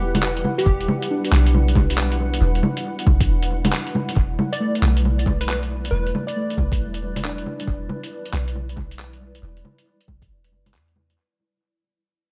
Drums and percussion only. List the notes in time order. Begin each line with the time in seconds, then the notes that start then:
0.15 closed hi-hat, low bongo
0.23 clap
0.37 closed hi-hat
0.44 low bongo
0.59 closed hi-hat
0.66 kick
0.81 closed hi-hat
0.88 low bongo
1.02 closed hi-hat
1.25 closed hi-hat
1.33 clap, low bongo
1.47 closed hi-hat
1.55 low bongo
1.68 closed hi-hat
1.76 kick, low bongo
1.90 closed hi-hat
1.98 clap
2.12 closed hi-hat
2.34 closed hi-hat
2.55 closed hi-hat
2.63 low bongo
2.77 closed hi-hat
2.99 closed hi-hat
3.07 kick, low bongo
3.21 kick, closed hi-hat
3.43 closed hi-hat
3.65 closed hi-hat, low bongo
3.72 clap
3.87 closed hi-hat
3.95 low bongo
4.09 closed hi-hat
4.16 kick
4.39 low bongo
4.53 closed hi-hat
4.75 closed hi-hat
4.83 clap, low bongo
4.97 closed hi-hat
5.05 low bongo
5.19 closed hi-hat
5.26 kick, low bongo
5.41 closed hi-hat
5.49 clap
5.63 closed hi-hat
5.85 closed hi-hat
6.07 closed hi-hat
6.15 low bongo
6.28 closed hi-hat
6.50 closed hi-hat
6.58 kick, low bongo
6.72 kick, closed hi-hat
6.94 closed hi-hat
7.16 closed hi-hat, low bongo
7.25 clap
7.38 closed hi-hat
7.46 low bongo
7.60 closed hi-hat
7.67 kick
7.89 low bongo
8.03 closed hi-hat
8.25 closed hi-hat
8.33 clap, low bongo
8.48 closed hi-hat
8.55 low bongo
8.69 closed hi-hat
8.77 kick, low bongo
8.91 closed hi-hat
8.99 clap
9.13 closed hi-hat
9.35 closed hi-hat
9.57 closed hi-hat
9.65 low bongo
9.78 closed hi-hat
10.01 closed hi-hat
10.08 kick, low bongo
10.22 kick, closed hi-hat
10.44 closed hi-hat
10.66 closed hi-hat, low bongo
10.74 clap
10.88 closed hi-hat
10.96 low bongo
11.10 closed hi-hat